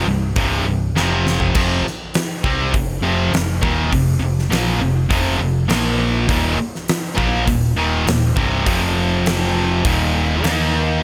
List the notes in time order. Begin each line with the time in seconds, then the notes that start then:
0.05 C1 C2 G2
0.36 C1 C2 G2 C3, kick, open hi-hat
0.63 C1 C2
0.68 G2
0.94 F1 F2 C3 F3, snare
1.27 snare
1.40 floor tom
1.55 F1 F2 C3 F3, kick, crash
1.83 muted picked electric bass stroke, muted distorted electric guitar stroke, snare
2.14 snare, open hi-hat
2.44 C2 C3 G3 C4, kick
2.74 F1 F2 C3, kick, open hi-hat
3.02 F1 F2 C3 F3
3.32 F1 F2 C3, snare, open hi-hat
3.62 D#1 D#2 A#2 D#3, kick
3.91 F1 F2 C3, kick, open hi-hat
4.19 F1 F2 C3
4.39 snare
4.49 A#1 A#2 F3 A#3, snare, open hi-hat
4.79 F1 F2 C3
5.09 F1 F2 C3 F3, kick, open hi-hat
5.38 F1 F2 C3
5.68 A#1 A#2 F3 A#3, snare, open hi-hat
6.28 D#1 D#2 A#2 D#3, kick, open hi-hat
6.57 muted distorted electric guitar stroke, muted picked electric bass stroke
6.75 snare
6.88 snare, open hi-hat
7.17 A#1 A#2 F3 A#3, kick
7.46 D#1 D#2 A#2, kick, open hi-hat
7.75 D#1 D#2 A#2 D#3
8.06 D#1 D#2 A#2, snare, open hi-hat
8.36 C1 C2 G2 C3, kick
8.66 F1 F2 C3 F3, kick, open hi-hat
9.26 snare, open hi-hat
9.85 D#1 D#2 A#2 D#3, kick, open hi-hat
10.44 D#2 D#3 A#3 D#4, snare, open hi-hat